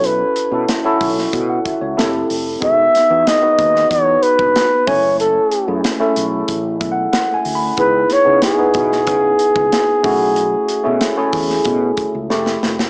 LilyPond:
<<
  \new Staff \with { instrumentName = "Flugelhorn" } { \time 4/4 \key b \mixolydian \tempo 4 = 93 b'4 r2. | e''4 dis''4 cis''8 b'4 cis''8 | a'4 r2. | b'8 cis''8 gis'2.~ |
gis'2. r4 | }
  \new Staff \with { instrumentName = "Tine electric piano" } { \time 4/4 \key b \mixolydian << { r2 r16 fis''16 e''16 cis''8 r8. | r1 | r2 \tuplet 3/2 { r8. e''16 fis''8 fis''8 gis''8 b''8 } | r1 |
r1 | } \\ { <cis' e' fis' a'>8 r16 <cis' e' fis' a'>16 r16 <cis' e' fis' a'>4~ <cis' e' fis' a'>16 r8 <c' e' g' a'>8. r16 | <b dis' fis' gis'>8 r16 <b dis' fis' gis'>16 r16 <b dis' fis' b'>4~ <b dis' fis' b'>16 r4 <a cis' e' gis''>8~ | <a cis' e' gis''>8 r16 <a cis' e' gis'>16 r16 <a cis' e' a'>4~ <a cis' e' a'>16 r4. | <b dis' e' gis'>8 r16 <b dis' e' gis'>16 r16 <b dis' e' b'>4~ <b dis' e' b'>16 r4 <a cis' e' fis'>8~ |
<a cis' e' fis'>8 r16 <a cis' e' gis'>16 r16 <a cis' e' gis'>4~ <a cis' e' gis'>16 r8 <a c' e' g'>8. r16 | } >> }
  \new Staff \with { instrumentName = "Fretless electric bass" } { \clef bass \time 4/4 \key b \mixolydian b,,8 r16 b,16 r8 b,,8 b,8 r16 cis,16 f,,8 f,,8 | e,,8 r16 e,16 r8 dis,8 e,8 r16 e,,16 r8 fis,,8~ | fis,,8 r16 fis,16 r8 b,,8 a,,8 b,,8 r8 d,8 | cis,8 r16 cis16 r8 b,8 cis8 r16 cis,16 r8 b,,8~ |
b,,8 r16 b,16 r8 e,8 b,8 r16 cis,16 f,,8 f,,8 | }
  \new DrumStaff \with { instrumentName = "Drums" } \drummode { \time 4/4 hh8 hh8 <hh sn>8 <hho bd>16 sn16 <hh bd>8 <hh bd>8 <hh sn>8 hho8 | <hh bd>8 <hh sn>8 <hh sn>8 <hh bd>16 sn16 <hh bd>8 hh16 bd16 <hh sn>8 <hho bd>8 | hh8 hh8 <hh sn>8 hh8 <hh bd>8 <hh bd>8 <hh sn>8 hho8 | <hh bd>8 <hh sn>8 <hh sn>8 <hh bd>16 sn16 <hh bd>8 hh16 bd16 <hh sn>8 <hho bd>8 |
hh8 hh8 <hh sn>8 <hho bd>16 sn16 <hh bd>8 <hh bd>8 sn16 sn16 sn16 sn16 | }
>>